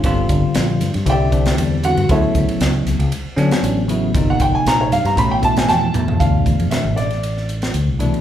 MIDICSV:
0, 0, Header, 1, 6, 480
1, 0, Start_track
1, 0, Tempo, 513699
1, 45, Time_signature, 4, 2, 24, 8
1, 7670, End_track
2, 0, Start_track
2, 0, Title_t, "Grand piano"
2, 0, Program_c, 0, 0
2, 1025, Note_on_c, 0, 76, 74
2, 1025, Note_on_c, 0, 79, 87
2, 1028, Note_on_c, 0, 74, 71
2, 1031, Note_on_c, 0, 67, 68
2, 1696, Note_off_c, 0, 76, 0
2, 1696, Note_off_c, 0, 79, 0
2, 1698, Note_off_c, 0, 74, 0
2, 1699, Note_off_c, 0, 67, 0
2, 1726, Note_on_c, 0, 78, 94
2, 1729, Note_on_c, 0, 66, 67
2, 1957, Note_off_c, 0, 78, 0
2, 1958, Note_off_c, 0, 66, 0
2, 1970, Note_on_c, 0, 76, 78
2, 1973, Note_on_c, 0, 69, 64
2, 1974, Note_on_c, 0, 64, 64
2, 1974, Note_on_c, 0, 73, 60
2, 2412, Note_off_c, 0, 76, 0
2, 2414, Note_off_c, 0, 69, 0
2, 2415, Note_off_c, 0, 64, 0
2, 2415, Note_off_c, 0, 73, 0
2, 4019, Note_on_c, 0, 78, 82
2, 4124, Note_off_c, 0, 78, 0
2, 4124, Note_on_c, 0, 79, 92
2, 4244, Note_off_c, 0, 79, 0
2, 4250, Note_on_c, 0, 80, 90
2, 4360, Note_off_c, 0, 80, 0
2, 4369, Note_on_c, 0, 82, 100
2, 4486, Note_off_c, 0, 82, 0
2, 4493, Note_on_c, 0, 73, 55
2, 4600, Note_on_c, 0, 77, 103
2, 4601, Note_off_c, 0, 73, 0
2, 4722, Note_off_c, 0, 77, 0
2, 4730, Note_on_c, 0, 82, 83
2, 4840, Note_off_c, 0, 82, 0
2, 4845, Note_on_c, 0, 83, 99
2, 4964, Note_off_c, 0, 83, 0
2, 4965, Note_on_c, 0, 79, 87
2, 5077, Note_off_c, 0, 79, 0
2, 5086, Note_on_c, 0, 81, 104
2, 5205, Note_off_c, 0, 81, 0
2, 5216, Note_on_c, 0, 80, 88
2, 5312, Note_on_c, 0, 81, 108
2, 5323, Note_off_c, 0, 80, 0
2, 5328, Note_on_c, 0, 79, 86
2, 5470, Note_off_c, 0, 79, 0
2, 5789, Note_on_c, 0, 77, 84
2, 5811, Note_off_c, 0, 81, 0
2, 6266, Note_on_c, 0, 76, 74
2, 6290, Note_off_c, 0, 77, 0
2, 6507, Note_on_c, 0, 74, 78
2, 6521, Note_off_c, 0, 76, 0
2, 6961, Note_off_c, 0, 74, 0
2, 7670, End_track
3, 0, Start_track
3, 0, Title_t, "Tine electric piano"
3, 0, Program_c, 1, 4
3, 40, Note_on_c, 1, 50, 79
3, 44, Note_on_c, 1, 55, 77
3, 45, Note_on_c, 1, 60, 71
3, 53, Note_on_c, 1, 65, 95
3, 847, Note_off_c, 1, 50, 0
3, 849, Note_off_c, 1, 55, 0
3, 849, Note_off_c, 1, 60, 0
3, 853, Note_off_c, 1, 65, 0
3, 991, Note_on_c, 1, 50, 75
3, 991, Note_on_c, 1, 55, 67
3, 997, Note_on_c, 1, 60, 68
3, 1006, Note_on_c, 1, 64, 78
3, 1199, Note_off_c, 1, 50, 0
3, 1199, Note_off_c, 1, 55, 0
3, 1202, Note_off_c, 1, 60, 0
3, 1206, Note_off_c, 1, 64, 0
3, 1227, Note_on_c, 1, 50, 75
3, 1228, Note_on_c, 1, 55, 63
3, 1236, Note_on_c, 1, 60, 72
3, 1240, Note_on_c, 1, 62, 75
3, 1639, Note_off_c, 1, 50, 0
3, 1640, Note_off_c, 1, 55, 0
3, 1644, Note_off_c, 1, 60, 0
3, 1646, Note_off_c, 1, 62, 0
3, 1710, Note_on_c, 1, 50, 68
3, 1716, Note_on_c, 1, 55, 53
3, 1726, Note_on_c, 1, 60, 57
3, 1735, Note_on_c, 1, 66, 64
3, 1918, Note_off_c, 1, 50, 0
3, 1921, Note_off_c, 1, 55, 0
3, 1926, Note_off_c, 1, 60, 0
3, 1931, Note_off_c, 1, 66, 0
3, 1954, Note_on_c, 1, 49, 71
3, 1962, Note_on_c, 1, 54, 66
3, 1962, Note_on_c, 1, 59, 66
3, 1973, Note_on_c, 1, 64, 75
3, 2763, Note_off_c, 1, 49, 0
3, 2767, Note_off_c, 1, 54, 0
3, 2767, Note_off_c, 1, 59, 0
3, 2773, Note_off_c, 1, 64, 0
3, 3144, Note_on_c, 1, 61, 96
3, 3151, Note_on_c, 1, 54, 78
3, 3158, Note_on_c, 1, 59, 72
3, 3162, Note_on_c, 1, 62, 97
3, 3557, Note_off_c, 1, 61, 0
3, 3561, Note_off_c, 1, 54, 0
3, 3564, Note_off_c, 1, 59, 0
3, 3566, Note_off_c, 1, 62, 0
3, 3628, Note_on_c, 1, 49, 75
3, 3631, Note_on_c, 1, 54, 67
3, 3642, Note_on_c, 1, 59, 71
3, 3647, Note_on_c, 1, 64, 75
3, 3837, Note_off_c, 1, 49, 0
3, 3838, Note_off_c, 1, 54, 0
3, 3844, Note_off_c, 1, 59, 0
3, 3846, Note_off_c, 1, 64, 0
3, 3875, Note_on_c, 1, 48, 75
3, 3877, Note_on_c, 1, 53, 66
3, 3885, Note_on_c, 1, 58, 69
3, 3888, Note_on_c, 1, 63, 84
3, 4684, Note_off_c, 1, 48, 0
3, 4685, Note_off_c, 1, 53, 0
3, 4689, Note_off_c, 1, 58, 0
3, 4690, Note_off_c, 1, 63, 0
3, 4814, Note_on_c, 1, 47, 77
3, 4819, Note_on_c, 1, 52, 74
3, 4827, Note_on_c, 1, 57, 67
3, 4835, Note_on_c, 1, 61, 83
3, 5030, Note_off_c, 1, 47, 0
3, 5033, Note_off_c, 1, 52, 0
3, 5036, Note_off_c, 1, 57, 0
3, 5041, Note_off_c, 1, 61, 0
3, 5059, Note_on_c, 1, 47, 77
3, 5066, Note_on_c, 1, 52, 67
3, 5072, Note_on_c, 1, 57, 60
3, 5076, Note_on_c, 1, 64, 78
3, 5475, Note_off_c, 1, 47, 0
3, 5478, Note_off_c, 1, 52, 0
3, 5482, Note_off_c, 1, 57, 0
3, 5484, Note_off_c, 1, 64, 0
3, 5548, Note_on_c, 1, 47, 60
3, 5553, Note_on_c, 1, 52, 61
3, 5561, Note_on_c, 1, 57, 57
3, 5568, Note_on_c, 1, 64, 62
3, 5757, Note_off_c, 1, 47, 0
3, 5760, Note_off_c, 1, 52, 0
3, 5764, Note_off_c, 1, 57, 0
3, 5767, Note_off_c, 1, 64, 0
3, 5790, Note_on_c, 1, 47, 61
3, 5792, Note_on_c, 1, 52, 56
3, 5800, Note_on_c, 1, 57, 57
3, 5805, Note_on_c, 1, 62, 68
3, 6602, Note_off_c, 1, 47, 0
3, 6603, Note_off_c, 1, 52, 0
3, 6607, Note_off_c, 1, 57, 0
3, 6610, Note_off_c, 1, 62, 0
3, 7465, Note_on_c, 1, 47, 73
3, 7471, Note_on_c, 1, 52, 68
3, 7476, Note_on_c, 1, 57, 61
3, 7482, Note_on_c, 1, 62, 85
3, 7670, Note_off_c, 1, 47, 0
3, 7670, Note_off_c, 1, 52, 0
3, 7670, Note_off_c, 1, 57, 0
3, 7670, Note_off_c, 1, 62, 0
3, 7670, End_track
4, 0, Start_track
4, 0, Title_t, "Fingered electric bass"
4, 0, Program_c, 2, 33
4, 36, Note_on_c, 2, 31, 99
4, 263, Note_off_c, 2, 31, 0
4, 275, Note_on_c, 2, 31, 92
4, 396, Note_off_c, 2, 31, 0
4, 522, Note_on_c, 2, 34, 82
4, 746, Note_off_c, 2, 34, 0
4, 760, Note_on_c, 2, 43, 86
4, 878, Note_off_c, 2, 43, 0
4, 889, Note_on_c, 2, 43, 91
4, 986, Note_off_c, 2, 43, 0
4, 992, Note_on_c, 2, 36, 107
4, 1444, Note_off_c, 2, 36, 0
4, 1479, Note_on_c, 2, 40, 90
4, 1821, Note_off_c, 2, 40, 0
4, 1845, Note_on_c, 2, 43, 91
4, 1950, Note_off_c, 2, 43, 0
4, 1955, Note_on_c, 2, 38, 105
4, 2075, Note_off_c, 2, 38, 0
4, 2195, Note_on_c, 2, 38, 106
4, 2315, Note_off_c, 2, 38, 0
4, 2437, Note_on_c, 2, 37, 87
4, 2663, Note_off_c, 2, 37, 0
4, 2677, Note_on_c, 2, 37, 78
4, 2790, Note_off_c, 2, 37, 0
4, 2796, Note_on_c, 2, 37, 96
4, 2908, Note_off_c, 2, 37, 0
4, 3149, Note_on_c, 2, 50, 95
4, 3272, Note_off_c, 2, 50, 0
4, 3391, Note_on_c, 2, 33, 82
4, 3843, Note_off_c, 2, 33, 0
4, 3873, Note_on_c, 2, 31, 91
4, 4101, Note_off_c, 2, 31, 0
4, 4109, Note_on_c, 2, 31, 88
4, 4232, Note_off_c, 2, 31, 0
4, 4353, Note_on_c, 2, 34, 93
4, 4581, Note_off_c, 2, 34, 0
4, 4593, Note_on_c, 2, 43, 84
4, 4710, Note_off_c, 2, 43, 0
4, 4716, Note_on_c, 2, 43, 100
4, 4828, Note_off_c, 2, 43, 0
4, 4833, Note_on_c, 2, 33, 114
4, 5285, Note_off_c, 2, 33, 0
4, 5319, Note_on_c, 2, 41, 74
4, 5536, Note_off_c, 2, 41, 0
4, 5557, Note_on_c, 2, 40, 82
4, 5775, Note_off_c, 2, 40, 0
4, 5794, Note_on_c, 2, 38, 85
4, 6021, Note_off_c, 2, 38, 0
4, 6036, Note_on_c, 2, 38, 92
4, 6155, Note_off_c, 2, 38, 0
4, 6163, Note_on_c, 2, 41, 70
4, 6272, Note_off_c, 2, 41, 0
4, 6400, Note_on_c, 2, 33, 76
4, 7201, Note_off_c, 2, 33, 0
4, 7235, Note_on_c, 2, 38, 84
4, 7355, Note_off_c, 2, 38, 0
4, 7364, Note_on_c, 2, 36, 65
4, 7589, Note_off_c, 2, 36, 0
4, 7670, End_track
5, 0, Start_track
5, 0, Title_t, "Muted fingered electric bass strokes"
5, 2321, Note_on_c, 9, 29, 39
5, 2414, Note_off_c, 9, 29, 0
5, 3042, Note_on_c, 9, 29, 31
5, 3135, Note_off_c, 9, 29, 0
5, 3279, Note_on_c, 9, 29, 38
5, 3372, Note_off_c, 9, 29, 0
5, 6279, Note_on_c, 9, 29, 31
5, 6372, Note_off_c, 9, 29, 0
5, 7670, End_track
6, 0, Start_track
6, 0, Title_t, "Drums"
6, 33, Note_on_c, 9, 44, 81
6, 33, Note_on_c, 9, 51, 72
6, 36, Note_on_c, 9, 36, 93
6, 127, Note_off_c, 9, 44, 0
6, 127, Note_off_c, 9, 51, 0
6, 129, Note_off_c, 9, 36, 0
6, 271, Note_on_c, 9, 44, 82
6, 271, Note_on_c, 9, 51, 62
6, 274, Note_on_c, 9, 36, 79
6, 365, Note_off_c, 9, 44, 0
6, 365, Note_off_c, 9, 51, 0
6, 368, Note_off_c, 9, 36, 0
6, 509, Note_on_c, 9, 44, 90
6, 509, Note_on_c, 9, 51, 79
6, 519, Note_on_c, 9, 38, 106
6, 602, Note_off_c, 9, 44, 0
6, 602, Note_off_c, 9, 51, 0
6, 612, Note_off_c, 9, 38, 0
6, 754, Note_on_c, 9, 44, 83
6, 754, Note_on_c, 9, 51, 61
6, 764, Note_on_c, 9, 38, 30
6, 848, Note_off_c, 9, 44, 0
6, 848, Note_off_c, 9, 51, 0
6, 858, Note_off_c, 9, 38, 0
6, 878, Note_on_c, 9, 51, 54
6, 888, Note_on_c, 9, 38, 26
6, 972, Note_off_c, 9, 51, 0
6, 982, Note_off_c, 9, 38, 0
6, 994, Note_on_c, 9, 36, 62
6, 994, Note_on_c, 9, 44, 86
6, 994, Note_on_c, 9, 51, 77
6, 1087, Note_off_c, 9, 44, 0
6, 1087, Note_off_c, 9, 51, 0
6, 1088, Note_off_c, 9, 36, 0
6, 1235, Note_on_c, 9, 36, 65
6, 1238, Note_on_c, 9, 44, 66
6, 1238, Note_on_c, 9, 51, 52
6, 1329, Note_off_c, 9, 36, 0
6, 1331, Note_off_c, 9, 44, 0
6, 1331, Note_off_c, 9, 51, 0
6, 1360, Note_on_c, 9, 51, 62
6, 1370, Note_on_c, 9, 38, 99
6, 1454, Note_off_c, 9, 51, 0
6, 1464, Note_off_c, 9, 38, 0
6, 1477, Note_on_c, 9, 44, 75
6, 1477, Note_on_c, 9, 51, 88
6, 1571, Note_off_c, 9, 44, 0
6, 1571, Note_off_c, 9, 51, 0
6, 1715, Note_on_c, 9, 44, 79
6, 1715, Note_on_c, 9, 51, 61
6, 1808, Note_off_c, 9, 44, 0
6, 1808, Note_off_c, 9, 51, 0
6, 1844, Note_on_c, 9, 51, 61
6, 1938, Note_off_c, 9, 51, 0
6, 1955, Note_on_c, 9, 36, 100
6, 1956, Note_on_c, 9, 44, 72
6, 1956, Note_on_c, 9, 51, 84
6, 2049, Note_off_c, 9, 36, 0
6, 2049, Note_off_c, 9, 44, 0
6, 2049, Note_off_c, 9, 51, 0
6, 2194, Note_on_c, 9, 44, 78
6, 2194, Note_on_c, 9, 51, 62
6, 2195, Note_on_c, 9, 36, 76
6, 2287, Note_off_c, 9, 44, 0
6, 2287, Note_off_c, 9, 51, 0
6, 2289, Note_off_c, 9, 36, 0
6, 2323, Note_on_c, 9, 51, 66
6, 2416, Note_off_c, 9, 51, 0
6, 2434, Note_on_c, 9, 44, 87
6, 2434, Note_on_c, 9, 51, 85
6, 2444, Note_on_c, 9, 38, 111
6, 2528, Note_off_c, 9, 44, 0
6, 2528, Note_off_c, 9, 51, 0
6, 2538, Note_off_c, 9, 38, 0
6, 2678, Note_on_c, 9, 44, 75
6, 2678, Note_on_c, 9, 51, 57
6, 2688, Note_on_c, 9, 38, 33
6, 2771, Note_off_c, 9, 44, 0
6, 2771, Note_off_c, 9, 51, 0
6, 2781, Note_off_c, 9, 38, 0
6, 2801, Note_on_c, 9, 51, 62
6, 2894, Note_off_c, 9, 51, 0
6, 2914, Note_on_c, 9, 44, 76
6, 2914, Note_on_c, 9, 51, 85
6, 3008, Note_off_c, 9, 44, 0
6, 3008, Note_off_c, 9, 51, 0
6, 3155, Note_on_c, 9, 44, 78
6, 3155, Note_on_c, 9, 51, 53
6, 3165, Note_on_c, 9, 38, 27
6, 3249, Note_off_c, 9, 44, 0
6, 3249, Note_off_c, 9, 51, 0
6, 3259, Note_off_c, 9, 38, 0
6, 3282, Note_on_c, 9, 51, 59
6, 3293, Note_on_c, 9, 38, 116
6, 3376, Note_off_c, 9, 51, 0
6, 3386, Note_off_c, 9, 38, 0
6, 3398, Note_on_c, 9, 44, 80
6, 3398, Note_on_c, 9, 51, 72
6, 3491, Note_off_c, 9, 44, 0
6, 3491, Note_off_c, 9, 51, 0
6, 3636, Note_on_c, 9, 44, 74
6, 3636, Note_on_c, 9, 51, 62
6, 3729, Note_off_c, 9, 44, 0
6, 3729, Note_off_c, 9, 51, 0
6, 3873, Note_on_c, 9, 36, 102
6, 3880, Note_on_c, 9, 44, 77
6, 3880, Note_on_c, 9, 51, 69
6, 3967, Note_off_c, 9, 36, 0
6, 3973, Note_off_c, 9, 44, 0
6, 3973, Note_off_c, 9, 51, 0
6, 4107, Note_on_c, 9, 44, 89
6, 4107, Note_on_c, 9, 51, 58
6, 4111, Note_on_c, 9, 36, 80
6, 4201, Note_off_c, 9, 44, 0
6, 4201, Note_off_c, 9, 51, 0
6, 4204, Note_off_c, 9, 36, 0
6, 4358, Note_on_c, 9, 44, 97
6, 4358, Note_on_c, 9, 51, 83
6, 4369, Note_on_c, 9, 38, 119
6, 4452, Note_off_c, 9, 44, 0
6, 4452, Note_off_c, 9, 51, 0
6, 4462, Note_off_c, 9, 38, 0
6, 4597, Note_on_c, 9, 44, 82
6, 4597, Note_on_c, 9, 51, 62
6, 4607, Note_on_c, 9, 38, 33
6, 4691, Note_off_c, 9, 44, 0
6, 4691, Note_off_c, 9, 51, 0
6, 4701, Note_off_c, 9, 38, 0
6, 4721, Note_on_c, 9, 51, 59
6, 4731, Note_on_c, 9, 38, 29
6, 4814, Note_off_c, 9, 51, 0
6, 4824, Note_off_c, 9, 38, 0
6, 4833, Note_on_c, 9, 36, 74
6, 4840, Note_on_c, 9, 44, 90
6, 4840, Note_on_c, 9, 51, 79
6, 4926, Note_off_c, 9, 36, 0
6, 4933, Note_off_c, 9, 44, 0
6, 4933, Note_off_c, 9, 51, 0
6, 5072, Note_on_c, 9, 36, 75
6, 5072, Note_on_c, 9, 44, 76
6, 5072, Note_on_c, 9, 51, 52
6, 5165, Note_off_c, 9, 44, 0
6, 5165, Note_off_c, 9, 51, 0
6, 5166, Note_off_c, 9, 36, 0
6, 5200, Note_on_c, 9, 51, 63
6, 5210, Note_on_c, 9, 38, 104
6, 5293, Note_off_c, 9, 51, 0
6, 5304, Note_off_c, 9, 38, 0
6, 5312, Note_on_c, 9, 44, 78
6, 5322, Note_on_c, 9, 38, 59
6, 5405, Note_off_c, 9, 44, 0
6, 5415, Note_off_c, 9, 38, 0
6, 5553, Note_on_c, 9, 44, 80
6, 5553, Note_on_c, 9, 45, 90
6, 5647, Note_off_c, 9, 44, 0
6, 5647, Note_off_c, 9, 45, 0
6, 5683, Note_on_c, 9, 43, 84
6, 5777, Note_off_c, 9, 43, 0
6, 5795, Note_on_c, 9, 36, 90
6, 5800, Note_on_c, 9, 44, 77
6, 5800, Note_on_c, 9, 51, 66
6, 5888, Note_off_c, 9, 36, 0
6, 5893, Note_off_c, 9, 44, 0
6, 5893, Note_off_c, 9, 51, 0
6, 6036, Note_on_c, 9, 36, 77
6, 6039, Note_on_c, 9, 44, 80
6, 6039, Note_on_c, 9, 51, 54
6, 6129, Note_off_c, 9, 36, 0
6, 6132, Note_off_c, 9, 44, 0
6, 6132, Note_off_c, 9, 51, 0
6, 6163, Note_on_c, 9, 51, 60
6, 6256, Note_off_c, 9, 51, 0
6, 6272, Note_on_c, 9, 44, 83
6, 6272, Note_on_c, 9, 51, 70
6, 6282, Note_on_c, 9, 38, 100
6, 6366, Note_off_c, 9, 44, 0
6, 6366, Note_off_c, 9, 51, 0
6, 6376, Note_off_c, 9, 38, 0
6, 6517, Note_on_c, 9, 44, 71
6, 6517, Note_on_c, 9, 51, 53
6, 6527, Note_on_c, 9, 38, 25
6, 6610, Note_off_c, 9, 44, 0
6, 6610, Note_off_c, 9, 51, 0
6, 6620, Note_off_c, 9, 38, 0
6, 6639, Note_on_c, 9, 51, 48
6, 6650, Note_on_c, 9, 38, 25
6, 6733, Note_off_c, 9, 51, 0
6, 6743, Note_off_c, 9, 38, 0
6, 6759, Note_on_c, 9, 44, 75
6, 6759, Note_on_c, 9, 51, 71
6, 6853, Note_off_c, 9, 44, 0
6, 6853, Note_off_c, 9, 51, 0
6, 6889, Note_on_c, 9, 38, 31
6, 6982, Note_off_c, 9, 38, 0
6, 6998, Note_on_c, 9, 44, 70
6, 6998, Note_on_c, 9, 51, 48
6, 7091, Note_off_c, 9, 44, 0
6, 7091, Note_off_c, 9, 51, 0
6, 7119, Note_on_c, 9, 51, 53
6, 7129, Note_on_c, 9, 38, 87
6, 7212, Note_off_c, 9, 51, 0
6, 7222, Note_off_c, 9, 38, 0
6, 7232, Note_on_c, 9, 44, 75
6, 7232, Note_on_c, 9, 51, 66
6, 7325, Note_off_c, 9, 44, 0
6, 7325, Note_off_c, 9, 51, 0
6, 7475, Note_on_c, 9, 44, 75
6, 7475, Note_on_c, 9, 51, 54
6, 7569, Note_off_c, 9, 44, 0
6, 7569, Note_off_c, 9, 51, 0
6, 7605, Note_on_c, 9, 51, 52
6, 7670, Note_off_c, 9, 51, 0
6, 7670, End_track
0, 0, End_of_file